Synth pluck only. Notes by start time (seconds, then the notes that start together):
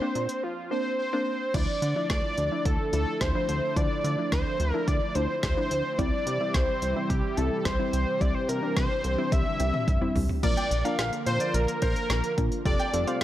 0.01 A#3 C4 D4
0.71 A#3 C4 D4
1.13 A#3 C4 D4
1.54 F3 D4 E4
1.96 F3 D4 E4
2.52 F3 D4 E4
2.93 F3 D4 E4
3.35 F3 D4 E4
3.77 F3 D4 E4
4.18 F3 D4 E4
4.74 F3 D4 E4
5.16 F3 D4 E4
5.57 F3 D4 E4
5.99 G3 C4 E4
6.40 G3 C4 E4
6.96 G3 C4 E4
7.38 G3 C4 E4
7.79 G3 C4 E4
8.21 G3 C4 E4
8.63 G3 C4 D4
9.18 G3 C4 E4
9.60 G3 C4 G4
10.01 G3 C4 E4
10.43 A#3 D4 F4 A#4
10.85 A#3 D4 F4 A#4
12.38 A#3 D4 F4 A#4
12.66 C4 F4 G4 A4
12.93 C4 F4 G4 A4
13.07 C4 F4 G4 C5